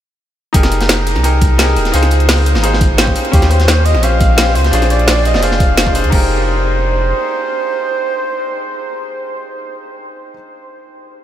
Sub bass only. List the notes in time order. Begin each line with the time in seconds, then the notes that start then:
0.54 F1
1.16 C2
1.77 D#1
1.94 C#2
2.55 G#1
2.90 G#1
3.33 D#2
3.95 A#1
4.56 C#2
4.73 A#1
5.34 F1
5.69 F1
6.04 D2
6.13 F1